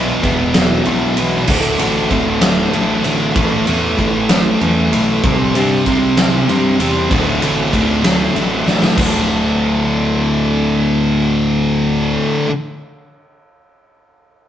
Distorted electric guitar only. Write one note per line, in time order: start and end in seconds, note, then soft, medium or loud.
0.00 0.21 E2 medium
0.00 0.22 B2 medium
0.00 0.22 E3 loud
0.23 0.53 E2 medium
0.23 0.53 B2 medium
0.23 0.54 E3 loud
0.54 0.83 E2 medium
0.54 0.84 B2 loud
0.54 0.85 E3 loud
0.85 1.16 E2 medium
0.85 1.16 B2 loud
0.85 1.17 E3 loud
1.17 1.46 E2 medium
1.17 1.47 B2 medium
1.17 1.47 E3 medium
1.48 1.78 D2 loud
1.48 1.79 A2 loud
1.48 1.79 D3 loud
1.79 2.08 D2 medium
1.79 2.09 A2 medium
1.79 2.10 D3 loud
2.10 2.40 D2 medium
2.10 2.41 A2 medium
2.10 2.41 D3 loud
2.41 2.72 D2 medium
2.41 2.73 A2 loud
2.41 2.73 D3 loud
2.73 3.02 D2 medium
2.73 3.03 A2 medium
2.73 3.04 D3 loud
3.03 3.33 D2 medium
3.03 3.34 A2 medium
3.03 3.34 D3 medium
3.36 3.65 A2 loud
3.36 3.67 E3 loud
3.36 3.67 A3 loud
3.66 3.97 A2 medium
3.66 3.98 E3 medium
3.66 3.98 A3 loud
3.98 4.28 A2 medium
3.98 4.29 E3 loud
3.98 4.29 A3 medium
4.29 4.59 A2 medium
4.29 4.60 E3 medium
4.29 4.60 A3 loud
4.61 4.91 A2 medium
4.61 4.91 E3 medium
4.61 4.92 A3 medium
4.92 5.21 A2 medium
4.92 5.22 E3 loud
4.92 5.22 A3 loud
5.23 5.53 C3 loud
5.23 5.54 G3 loud
5.23 5.54 C4 loud
5.54 5.85 C3 medium
5.54 5.86 G3 medium
5.54 5.86 C4 medium
5.86 6.16 C3 medium
5.86 6.17 G3 medium
5.86 6.17 C4 loud
6.17 6.47 C3 medium
6.17 6.48 G3 medium
6.17 6.48 C4 loud
6.48 6.78 C3 medium
6.48 6.79 G3 medium
6.48 6.79 C4 loud
6.79 7.09 C3 medium
6.79 7.09 G3 medium
6.79 7.09 C4 medium
7.11 7.40 D2 loud
7.11 7.41 A2 loud
7.11 7.42 D3 loud
7.42 7.71 D2 medium
7.42 7.72 A2 medium
7.42 7.72 D3 loud
7.73 8.02 D2 medium
7.73 8.03 A2 medium
7.73 8.04 D3 loud
8.03 8.34 D2 medium
8.03 8.34 A2 loud
8.03 8.35 D3 loud
8.35 8.65 D2 medium
8.35 8.65 A2 medium
8.35 8.66 D3 medium
8.66 8.94 D2 medium
8.66 8.96 A2 medium
8.66 8.96 D3 medium
8.96 12.46 D2 loud
8.96 12.48 A2 loud
8.96 12.49 D3 loud